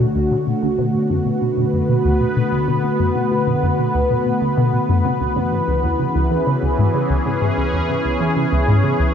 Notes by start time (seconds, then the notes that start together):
Already playing: D3 A3 C#4 F#4 C#5
0.00 B2
0.15 D2
0.31 B2
0.47 B2 B3
0.60 D3 B4
0.78 B2
0.94 B2
1.10 F#2
1.26 B2
1.41 B2
1.57 B2
1.73 F#2
1.89 B2
2.05 D2
2.20 B2
2.36 B2
2.52 D3
2.68 B2
2.84 B2
3.00 F#2
3.15 B2
3.31 B2
3.47 B2
3.63 F#2
3.79 B2
3.94 D2
4.10 B2
4.26 B2
4.42 D3
4.57 B2
4.73 B2
4.89 F#2
5.05 C#3 E3
5.20 C#2
5.36 C#3
5.52 G#2
5.62 C#4
5.68 C#2
5.76 G#4
5.84 E2
5.99 C#3
6.15 C#2
6.31 E3
6.47 C#3
6.62 C#2
6.78 G#2
6.94 C#3
7.10 C#2
7.26 C#3
7.42 G#2
7.57 C#2
7.73 E2
7.89 C#3
8.05 C#2
8.20 E3
8.36 C#3
8.52 C#2
8.68 G#2
8.84 C#3
8.99 C#2